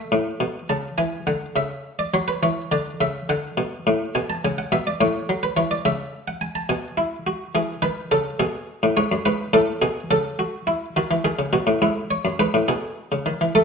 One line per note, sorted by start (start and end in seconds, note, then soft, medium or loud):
0.00 0.67 E5 medium
0.12 0.30 A2 medium
0.40 0.58 B2 medium
0.69 0.88 C#3 medium
0.69 0.87 A5 medium
0.98 1.16 E3 medium
0.98 1.16 G#5 medium
1.27 1.45 D3 medium
1.27 1.45 F#5 medium
1.56 2.12 C#3 medium
1.56 1.98 E5 medium
1.99 2.13 D5 medium
2.14 2.32 F#3 medium
2.14 2.28 C#5 medium
2.28 2.42 B4 medium
2.43 2.61 E3 medium
2.43 2.61 C#5 medium
2.72 2.90 D3 medium
2.72 2.90 D5 medium
3.01 3.18 C#3 medium
3.01 3.19 E5 medium
3.29 3.47 D3 medium
3.29 4.13 F#5 medium
3.57 3.75 B2 medium
3.87 4.05 A2 medium
4.15 4.33 B2 medium
4.15 4.29 G#5 medium
4.30 4.44 A5 medium
4.45 4.62 C#3 medium
4.45 4.58 G#5 medium
4.58 4.72 F#5 medium
4.72 4.90 B2 medium
4.72 4.86 E5 medium
4.87 5.01 D5 medium
5.01 5.18 A2 loud
5.01 5.42 C#5 medium
5.29 5.47 F#3 medium
5.43 5.57 B4 medium
5.57 5.75 E3 loud
5.57 5.71 C#5 medium
5.71 5.85 D5 medium
5.85 6.68 C#3 loud
5.85 6.27 E5 medium
6.28 6.42 F#5 medium
6.41 6.56 G#5 medium
6.55 6.70 A5 medium
6.69 7.52 B2 medium
6.69 6.87 G#5 medium
6.97 7.15 E4 medium
7.27 7.44 F#4 medium
7.55 7.72 E3 medium
7.55 7.73 G#4 loud
7.82 8.00 D#3 medium
7.82 8.00 B4 loud
8.11 8.30 C#3 medium
8.11 8.29 A4 medium
8.40 8.82 B2 medium
8.40 8.95 G#4 loud
8.83 8.97 A2 medium
8.97 9.11 G#2 medium
8.97 9.14 C#5 loud
9.12 9.25 F#2 medium
9.25 9.43 G#2 medium
9.25 9.43 B4 loud
9.53 9.71 A2 medium
9.53 9.71 A4 loud
9.82 10.00 B2 medium
9.82 9.99 G#4 loud
10.11 10.94 C#3 medium
10.11 10.28 A4 loud
10.39 10.57 F#4 loud
10.67 10.85 E4 loud
10.96 11.10 D#3 medium
10.96 11.14 F#4 loud
11.11 11.25 E3 medium
11.24 11.39 D#3 medium
11.24 11.43 G#4 loud
11.39 11.53 C#3 medium
11.53 11.67 B2 medium
11.53 11.71 F#4 loud
11.67 11.81 A2 medium
11.82 12.24 G#2 medium
11.82 12.00 E4 loud
12.11 12.29 C#5 loud
12.25 12.39 F#2 medium
12.39 12.54 G#2 medium
12.39 12.57 B4 loud
12.54 12.68 A2 medium
12.68 13.10 B2 medium
12.68 13.52 G#4 loud
13.12 13.26 C#3 medium
13.26 13.40 D#3 medium
13.41 13.55 E3 medium
13.55 13.64 A3 loud
13.55 13.64 A4 loud